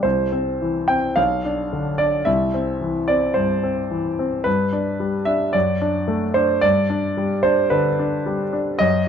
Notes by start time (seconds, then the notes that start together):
0.03 C2 C5
0.32 C4
0.62 E3
0.88 C4 G5
1.16 B1 F5
1.45 D4
1.73 D3
1.98 D4 D5
2.25 C2 E5
2.54 C4
2.81 E3
3.08 C4 D5
3.34 G2 C5
3.63 C4
3.91 E3
4.19 C4
4.44 G2 B4
4.72 D4
5.00 G3
5.25 D4 E5
5.53 F#2 D5
5.82 D4
6.08 A3
6.34 D4 C5
6.61 G2 D5
6.90 D4
7.17 G3
7.43 D4 C5
7.70 D3 B4
7.99 D4
8.26 G3
8.53 D4
8.79 F#2 D#5